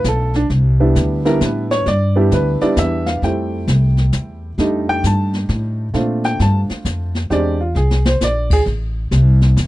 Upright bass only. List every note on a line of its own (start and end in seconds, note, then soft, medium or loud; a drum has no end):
0.04 0.48 B1 medium
0.50 0.94 C2 medium
0.95 1.39 D2 medium
1.41 1.85 A2 medium
1.86 2.30 G2 loud
2.31 2.59 D2 medium
2.61 muted upright bass stroke soft
2.77 3.21 E2 loud
3.22 3.66 F2 medium
3.67 4.11 C2 loud
4.13 4.57 E2 medium
4.58 5.02 F2 medium
5.03 5.47 G2 medium
5.49 5.93 A2 loud
5.94 6.38 A#2 medium
6.39 6.67 G2 medium
6.70 muted upright bass stroke soft
6.85 7.29 F2 medium
7.30 7.74 E2 medium
7.75 8.19 C2 medium
8.21 8.65 A#1 medium
8.66 9.10 A1 medium
9.11 9.55 C2 loud
9.57 9.67 E2 loud